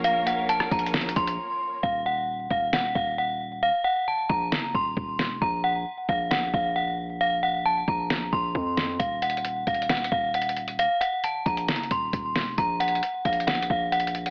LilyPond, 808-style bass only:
\new Staff \with { instrumentName = "808-style bass" } { \clef bass \time 4/4 \key ees \dorian \tempo 4 = 134 bes,,4. bes,,4 bes,,8 r4 | ees,,4. ees,,4 ees,,4.~ | ees,,16 r4 r16 bes,,8 ges,,8 ees,,8 ees,,8. f,,16 | bes,,4 r8 bes,,4 bes,,4.~ |
bes,,4. bes,,4 bes,,8 f,4 | ees,,4. ees,,4 ees,,4.~ | ees,,16 r4 r16 bes,,8 ges,,8 ees,,8 ees,,8. f,,16 | bes,,4 r8 bes,,4 bes,,4. | }